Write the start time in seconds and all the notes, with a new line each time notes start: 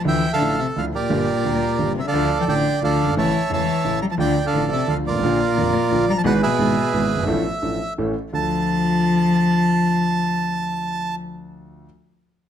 0.05 D2 D3 E3 F3 A3 E4 E5 G5
0.33 D3 A4 F5
0.41 A1 A2 D3 F3 A3 E4
0.59 C3 E5
0.76 D2 D3 F3 A3 E4 F5
0.95 A#2 G4 A#4 D5
1.09 G1 G2 D3 G3 A#3 G4
1.44 D2 D3 G3 A#3 G4
1.79 G1 G2 D3 G3 A#3 G4
1.98 C3 E5
2.06 D3 A4 D5 F5
2.13 D2 D3 F3 A3 F4
2.40 E3 G5
2.47 A1 A2 D3 F3 A3 F4 D5 G5
2.82 D2 D3 F3 A3 F4 A4 D5 F5
3.03 F#1 G1
3.13 G#1
3.17 A1 A2 C#3 E3 A3 E4 C#5 E5 A5
3.50 E1 E2 C#3 E3 A3 E4 C#5 E5 A5
3.84 A1 A2 C#3 E3 A3 E4
4.02 G3 A#5
4.10 F3 A5
4.18 D2 D3 F3 A3 F4 D5 G5
4.45 D3 A4 D5 F5
4.53 A1 A2 D3 F3 A3 F4
4.71 C3 E5
4.87 D2 D3 F3 A3 F4 F5
5.07 G1 A#2 F4 A#4 D5
5.15 G#1 A1
5.23 A#1 A#2 D3 F3 A#3 F4
5.57 F1 F2 D3 F3 A#3 F4
5.91 A#1 A#2 D3 F3 A#3 F4
6.08 G3 A#5
6.17 F3 A5
6.24 G#1 G#2 B2 E3 G#3 B3 G#4 B4 F#5
6.43 B2 G#4 B4 E5
6.58 G#1 G#2 E3 G#3 B3 G#4
6.93 G#1 G#2 E3 G#3 B3 G#4
7.16 F#1 G1
7.22 G#1
7.27 A1 A2 F3 A3 D4 A4
7.62 A1 A2 F3 A3 D4 A4
7.98 A1 A2 E3 A3 C#4 A4
8.32 D2 F3 D4 F4 A4 A5